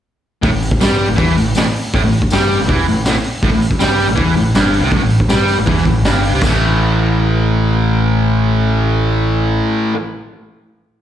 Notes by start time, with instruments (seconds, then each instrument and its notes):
0.42 picked electric bass A1, distorted electric guitar A2, kick, open hi-hat
0.51 picked electric bass A1, distorted electric guitar A2
0.62 open hi-hat
0.71 kick
0.81 picked electric bass G2, distorted electric guitar G3, snare, open hi-hat, tambourine
1.01 open hi-hat
1.08 picked electric bass A1, distorted electric guitar A2
1.16 picked electric bass E2, distorted electric guitar E3, kick, open hi-hat
1.37 picked electric bass A1, distorted electric guitar A2, open hi-hat
1.55 picked electric bass A1, distorted electric guitar A2, snare, open hi-hat, tambourine
1.76 open hi-hat
1.94 picked electric bass A1, distorted electric guitar A2, kick, open hi-hat
2.03 picked electric bass A1, distorted electric guitar A2
2.13 open hi-hat
2.22 kick
2.30 picked electric bass G2, distorted electric guitar G3, snare, open hi-hat, tambourine
2.51 open hi-hat
2.59 picked electric bass A1, distorted electric guitar A2, snare
2.68 picked electric bass E2, distorted electric guitar E3, kick, open hi-hat
2.88 picked electric bass A1, distorted electric guitar A2, open hi-hat
3.05 picked electric bass A1, distorted electric guitar A2, snare, open hi-hat, tambourine
3.24 open hi-hat
3.43 picked electric bass A1, distorted electric guitar A2, kick, open hi-hat
3.52 picked electric bass A1, distorted electric guitar A2
3.62 open hi-hat
3.71 kick
3.79 picked electric bass G2, distorted electric guitar G3, snare, open hi-hat, tambourine
4.00 open hi-hat
4.08 picked electric bass A1, distorted electric guitar A2
4.15 picked electric bass E2, distorted electric guitar E3, kick, open hi-hat
4.35 picked electric bass A1, distorted electric guitar A2, open hi-hat
4.53 picked electric bass G1, distorted electric guitar G2, snare, open hi-hat, tambourine
4.74 open hi-hat
4.80 picked electric bass C2, distorted electric guitar C3
4.91 picked electric bass A1, distorted electric guitar A2, kick, open hi-hat
5.01 picked electric bass A1, distorted electric guitar A2
5.10 open hi-hat
5.20 kick
5.28 picked electric bass G2, distorted electric guitar G3, snare, open hi-hat, tambourine
5.48 open hi-hat
5.58 picked electric bass A1, distorted electric guitar A2
5.66 picked electric bass E2, distorted electric guitar E3, kick, open hi-hat
5.77 snare
5.86 picked electric bass A1, distorted electric guitar A2, kick, open hi-hat
6.02 picked electric bass G1, distorted electric guitar G2, snare, open hi-hat
6.06 tambourine
6.23 open hi-hat
6.31 picked electric bass C2, distorted electric guitar C3
6.41 picked electric bass A1, distorted electric guitar A2 E3, kick, crash, tambourine
6.46 distorted electric guitar A3